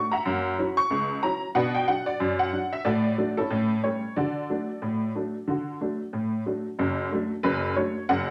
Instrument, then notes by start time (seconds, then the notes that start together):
honky-tonk piano
Already playing: A3 D4 F#4
0.12 E5 F#5 A#5
0.25 F#2 A#3
0.58 F#3 C#4 E4
0.77 C#6
0.90 C#2
1.23 F#3 C#4 E4 A#5
1.55 B2 D4 B4 D5 F#5
1.75 G5
1.88 F#3 D4 F#5
2.06 D5
2.20 F#2
2.39 F#5
2.52 F#3 D4
2.73 E5
2.85 A2 F#4 A4 D5
3.18 F#3 A3 D4
3.37 C#4 E4 A4
3.51 A2 C#4
3.84 G3 A3 C#4 C#5
4.16 D3 F#4 A4 D5
4.50 F#3 A3 D4
4.82 A2
5.15 F#3 A3 D4
5.48 D3 F#4
5.81 F#3 A3 D4
6.13 A2
6.46 F#3 A3 D4
6.79 F#1 F#2
7.12 F#3 A3 D4
7.43 F#1 F#2 B4
7.76 F#3 A3 D4 C#5
8.09 F#1 F#2 F#5